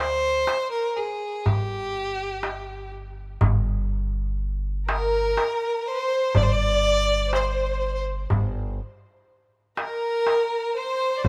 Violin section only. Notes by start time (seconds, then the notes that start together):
4.89 A#4
5.87 C5
6.35 D5
6.49 D5
7.33 C5
9.78 A#4
10.75 C5
11.18 D5
11.24 C5